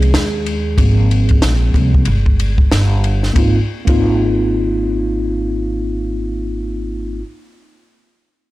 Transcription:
Already playing: C2 G#3 A#3 C4 G#4
0.02 ride
0.13 D#2, snare, hi-hat pedal, ride
0.46 ride
0.77 G#1 F3 A#3 C4, kick, ride
1.11 ride
1.29 kick, ride
1.42 A#1, snare, hi-hat pedal, ride
1.74 C2 F3 A#3 C4, kick, ride
1.94 kick
2.05 G1, ride
2.26 kick
2.40 ride
2.58 kick
2.72 G1, snare, hi-hat pedal, ride
3.04 ride
3.23 snare
3.33 G#1 A#3 C4 D#4, kick, ride
3.38 F4
3.85 G#1 A#3 C4 D#4, kick, ride
3.89 F4

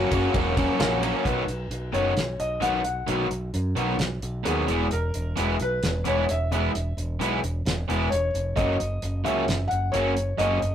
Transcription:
Already playing: C#3 F#3 A#3 C#4 F#4 C#5
0.11 F#1 F#2 C#3 F#3 A#3 C#4 F#4, kick, ride
0.33 E1 F#2 C#3 F#3 A#3 C#4 F#4 G#4, kick, ride
0.55 F#2 C#3 F#3 A#3 C#4 F#4, kick, ride
0.78 A#1 F#2 C#3 F#3 A#3 C#4 F#4 G#4 A#4, snare, ride
1.01 F#2 C#3 F#3 A#3 C#4 F#4, ride
1.17 C#5
1.24 B1 B2 D#3 F#3 B3 D#4 F#4 B4, kick, closed hi-hat
1.48 B1, closed hi-hat
1.71 B1, closed hi-hat
1.92 F#1 B2 D#3 F#3 B3 D#4 F#4 C#5, closed hi-hat
2.17 B1, snare, closed hi-hat
2.40 B1 D#5, closed hi-hat
2.61 B1 B2 D#3 F#3 B3 D#4 F#4 F#5, closed hi-hat
2.84 F#5, closed hi-hat
3.07 B1 B2 D#3 F#3 B3 D#4 F#4, closed hi-hat
3.30 B1, closed hi-hat
3.54 F#2, closed hi-hat
3.75 B1 B2 D#3 F#3 B3 D#4 F#4, closed hi-hat
3.99 B1, snare, closed hi-hat
4.22 B1, closed hi-hat
4.44 D#2 B2 D#3 F#3 B3 D#4 F#4 G#4, closed hi-hat
4.67 E1 E2 B2 E3 G#3 B3 E4 G#4, closed hi-hat
4.91 E1 A#4, closed hi-hat
5.14 E1, closed hi-hat
5.36 E1 E2 B2 E3 G#3 B3 E4 G#4, closed hi-hat
5.60 B1 B4, closed hi-hat
5.83 E1, snare, closed hi-hat
6.04 E1 E2 B2 E3 G#3 B3 E4 G#4 C#5, closed hi-hat
6.29 E1 E5, closed hi-hat
6.52 E2 B2 E3 G#3 B3 E4 G#4 E5, closed hi-hat
6.75 E1, closed hi-hat
6.97 E1, closed hi-hat
7.20 B1 E2 B2 E3 G#3 B3 E4 G#4, closed hi-hat
7.42 E1, closed hi-hat
7.65 E1, snare, closed hi-hat
7.88 E1 E2 B2 E3 G#3 B3 E4 G#4, closed hi-hat
8.10 E1 C#5, closed hi-hat
8.34 F1, closed hi-hat
8.56 F#1 F#2 C#3 F#3 A#3 C#4 F#4 D#5, kick, closed hi-hat
8.80 F#1, closed hi-hat
9.02 F#1, closed hi-hat
9.24 C#2 F#2 C#3 F#3 A#3 C#4 F#4 E5, closed hi-hat
9.48 F#1, snare, closed hi-hat
9.68 F#1 F#5, closed hi-hat
9.92 F#1 F#2 C#3 F#3 A#3 C#4 F#4 C#5, closed hi-hat
10.17 closed hi-hat
10.38 F#1 F#2 C#3 F#3 A#3 C#4 F#4 D#5, closed hi-hat
10.62 F#1, closed hi-hat

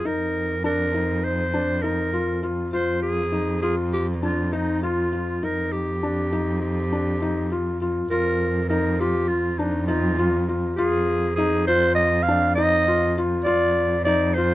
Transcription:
0.05 F2 D#4 A#4
0.64 D4 A#4
0.94 D#4
1.24 C5
1.54 D4
1.82 D#4 A#4
2.13 F4
2.43 F4
2.72 F2 F4 C5
3.02 G#4
3.32 D#4
3.62 F4 G#4
3.93 G4
4.22 D4 F4
4.52 D#4
4.82 F4
5.12 F4
5.42 F2 D#4 A#4
5.72 G4
6.03 D4
6.32 D#4
6.61 G4
6.92 D4
7.22 D#4
7.52 F4
7.81 F4
8.10 F2 F4 A#4
8.69 D#4 A#4
9.00 F4 G4
9.28 F2 F4
9.58 D4 D#4
9.86 D#4 F4
10.19 F4
10.49 F4
10.76 F2 F4 G#4
11.35 D#4 G#4
11.67 F4 C5
11.95 D#5
12.23 F5
12.28 D4
12.55 D#4 D#5
12.88 F4
13.18 F4
13.44 F2 F4 D5
14.04 D#4 D5
14.34 F4 C5

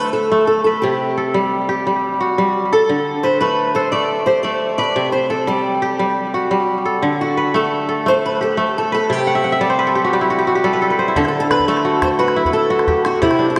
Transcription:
Already playing: D3 A3 D4 E4 A4 B4
0.13 A4
0.32 A3
0.47 A4
0.64 A4 B4
0.82 C3 G4
1.18 A4
1.34 G3
1.69 G4
1.87 G3
2.21 F#4
2.38 G3
2.72 A4
2.89 D3
3.23 B4 C5
3.41 A3 B4
3.75 A4 C5
3.92 A3 D5
4.26 G4 C5
4.43 A3 D5
4.78 B4 D5
4.96 C3
5.12 C5
5.30 A4
5.47 G3 G4
5.82 G4
5.99 G3
6.34 F#4
6.51 G3
6.85 A4
7.03 D3
7.21 F#4
7.37 B4
7.54 A3 A4
7.89 A4
8.06 A3 C5
8.26 B4
8.41 G4 A4
8.57 A3
8.78 A4
8.92 A4 B4
9.10 C3 G4
9.18 G5
9.27 F#5
9.35 E5
9.44 F#5
9.52 E5
9.61 G3 D5
9.70 C5
9.79 B4
9.87 A4
9.95 G4
10.05 F#4
10.13 G3 G4
10.21 E4
10.30 F#4
10.39 G4
10.47 F#4
10.55 G4
10.64 G3 A4
10.73 B4
10.82 A4
10.90 B4
10.99 C5
11.08 E4
11.16 D3 A4, calabash thump
11.25 A4, calabash click
11.34 calabash click
11.40 A4
11.51 B4, calabash click
11.59 calabash thump
11.68 A3 A4
11.77 calabash click
11.85 F#4
12.02 C5, calabash thump, calabash click
12.11 calabash click
12.19 F#4 B4
12.28 calabash click
12.36 E4
12.45 B4, calabash thump
12.53 A4
12.70 F#4
12.79 calabash click
12.87 G4, calabash thump, calabash click
13.05 F#4, calabash click
13.22 C3 E4 G4, calabash thump
13.31 calabash click
13.39 D4, calabash click
13.50 A4
13.56 calabash click

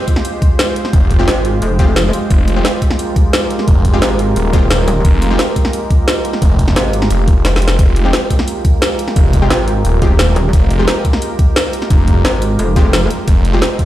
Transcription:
Already playing: G#3 F4 G4 C5
0.08 kick, closed hi-hat
0.16 snare
0.25 closed hi-hat
0.42 kick, closed hi-hat
0.59 snare, closed hi-hat
0.76 closed hi-hat
0.85 snare
0.93 F1, kick, closed hi-hat
1.11 kick, closed hi-hat
1.19 G#3 C4 F4 G4
1.28 G#1, snare, closed hi-hat
1.45 closed hi-hat
1.62 F1, closed hi-hat
1.79 G#3 C4 F4 G4, kick, closed hi-hat
1.96 snare, closed hi-hat
2.13 closed hi-hat
2.30 F1 A#4, kick, closed hi-hat
2.48 closed hi-hat
2.56 G#3 C4 F4 G4
2.65 snare, closed hi-hat
2.82 kick, closed hi-hat
2.91 snare
2.99 closed hi-hat
3.16 kick, closed hi-hat
3.33 snare, closed hi-hat
3.50 closed hi-hat
3.59 snare
3.68 F1, kick, closed hi-hat
3.85 kick, closed hi-hat
3.93 G#3 C4 F4 G4
4.02 G#1, snare, closed hi-hat
4.19 closed hi-hat
4.36 D#1, closed hi-hat
4.53 G#3 C4 F4 G4, kick, closed hi-hat
4.71 snare, closed hi-hat
4.88 D#1, closed hi-hat
5.05 F1, kick, closed hi-hat
5.22 closed hi-hat
5.30 G#3 C4 F4 G4
5.39 snare, closed hi-hat
5.56 kick, closed hi-hat
5.65 snare
5.73 closed hi-hat
5.90 kick, closed hi-hat
6.08 snare, closed hi-hat
6.25 closed hi-hat
6.33 snare
6.42 F1, kick, closed hi-hat
6.59 kick, closed hi-hat
6.68 snare
6.76 G#1, snare, closed hi-hat
6.93 closed hi-hat
7.02 snare
7.10 F1, closed hi-hat
7.28 kick, closed hi-hat
7.45 snare, closed hi-hat
7.56 snare
7.62 closed hi-hat
7.68 snare
7.79 F1 A#4, kick, closed hi-hat
7.96 closed hi-hat
8.05 G#3 C4 F4 G4
8.13 snare, closed hi-hat
8.30 kick, closed hi-hat
8.39 snare
8.48 closed hi-hat
8.65 kick, closed hi-hat
8.82 snare, closed hi-hat
8.99 closed hi-hat
9.08 snare
9.16 F1, kick, closed hi-hat
9.33 kick, closed hi-hat
9.42 G#3 C4 F4 G4
9.50 G#1, snare, closed hi-hat
9.68 closed hi-hat
9.85 D#1, closed hi-hat
10.02 G#3 C4 F4 G4, kick, closed hi-hat
10.19 snare, closed hi-hat
10.36 D#1, closed hi-hat
10.53 F1, kick, closed hi-hat
10.70 closed hi-hat
10.79 G#3 C4 F4 G4
10.88 snare, closed hi-hat
11.05 kick, closed hi-hat
11.13 snare
11.22 closed hi-hat
11.39 kick, closed hi-hat
11.56 snare, closed hi-hat
11.73 closed hi-hat
11.82 snare
11.90 F1, kick, closed hi-hat
12.08 kick, closed hi-hat
12.25 G#1, snare, closed hi-hat
12.42 closed hi-hat
12.59 F1, closed hi-hat
12.76 G#3 C4 F4 G4, kick, closed hi-hat
12.93 snare, closed hi-hat
13.10 closed hi-hat
13.28 F1 D#5, kick, closed hi-hat
13.45 closed hi-hat
13.53 G#3 C4 F4 G4
13.62 snare, closed hi-hat
13.79 kick, closed hi-hat

